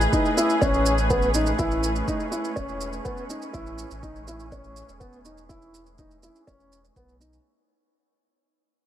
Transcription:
Already playing: string section A3 G#4 B4 D#5
0.01 shaker
0.12 upright piano D#4, kick, shaker
0.21 string section C#4
0.26 shaker
0.37 upright piano E4, shaker
0.50 shaker
0.62 sub bass A1, upright piano C#4, kick, shaker
0.74 shaker
0.86 shaker
0.98 shaker
1.10 upright piano B3, kick, shaker
1.22 shaker
1.34 upright piano D#4, shaker
1.46 shaker
1.59 sub bass A1, upright piano E4, kick, shaker
1.71 shaker
1.83 shaker
1.96 shaker
2.08 upright piano D#4, kick, shaker
2.20 shaker
2.32 upright piano E4, shaker
2.45 shaker
2.56 sub bass E1, upright piano C#4, kick, shaker
2.69 shaker
2.81 shaker
2.93 shaker
3.05 upright piano B3, kick, shaker
3.17 shaker
3.29 upright piano D#4, shaker
3.42 shaker
3.53 sub bass A1, upright piano E4, kick, shaker
3.67 shaker
3.78 shaker
3.91 sub bass A1, shaker
4.03 upright piano D#4, kick, shaker
4.16 shaker
4.28 upright piano E4, shaker
4.40 shaker
4.52 upright piano C#4, kick, shaker
4.64 shaker
4.76 shaker
4.89 sub bass E1, shaker
5.00 upright piano B3, kick, shaker
5.13 shaker
5.25 upright piano D#4, shaker
5.38 shaker
5.49 upright piano E4, kick, shaker
5.62 shaker
5.74 shaker
5.86 shaker
5.98 upright piano D#4, kick, shaker
6.11 shaker
6.23 upright piano E4, shaker
6.36 shaker
6.47 sub bass E1, upright piano C#4, kick, shaker
6.60 shaker
6.72 shaker
6.85 shaker
6.96 sub bass B1, upright piano B3, kick, shaker
7.09 shaker
7.20 upright piano D#4, shaker
7.33 shaker

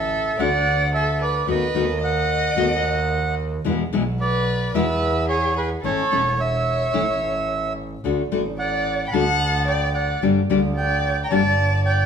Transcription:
Already playing: double bass A1, violin A4, bandoneon E5
0.39 double bass D2, nylon-string guitar D3 A3 D4 F#4, violin D5, bandoneon F#5
0.94 violin A4, bandoneon E5
1.22 violin B4, bandoneon D5
1.47 double bass D#2, nylon-string guitar D#3 A3 B3 F#4, violin B4, bandoneon D#5
1.74 double bass D#2, nylon-string guitar D#3 A3 B3 F#4
2.03 violin D#5, bandoneon F#5
2.56 double bass D#2, nylon-string guitar D#3 A3 B3 F#4
3.64 double bass E2, nylon-string guitar B2 E3 G#3 B3 E4
3.92 double bass B1, nylon-string guitar B2 E3 G#3 B3 E4
4.20 violin B4, bandoneon D5
4.74 double bass E2, nylon-string guitar B2 E3 G#3 B3 E4, violin B4, bandoneon E5
5.29 violin G#4, bandoneon C#5
5.56 violin G#4, bandoneon B4
5.83 double bass A1, nylon-string guitar E3 A3 C#4 E4, violin A4, bandoneon C#5
6.11 double bass E1, nylon-string guitar E3 A3 C#4 E4
6.38 violin C#5, bandoneon E5
6.93 double bass A1, nylon-string guitar E3 A3 C#4 E4
8.04 double bass D2, nylon-string guitar D3 A3 D4 F#4
8.31 double bass A1, nylon-string guitar D3 A3 D4 F#4
8.59 violin D5, bandoneon F#5
9.06 violin G5, bandoneon B5
9.13 double bass D2, nylon-string guitar D3 A3 D4 F#4, violin F#5, bandoneon A5
9.67 violin D5, bandoneon G5
9.95 violin D5, bandoneon F#5
10.22 double bass G1, nylon-string guitar D3 G3 A#3 D4 G4
10.49 double bass D2, nylon-string guitar D3 G3 A#3 D4 G4
10.77 violin D5, bandoneon G5
11.24 violin G5, bandoneon A#5
11.30 double bass G1, nylon-string guitar D3 G3 A#3 D4 G4, violin D5, bandoneon A5
11.85 violin D5, bandoneon G5

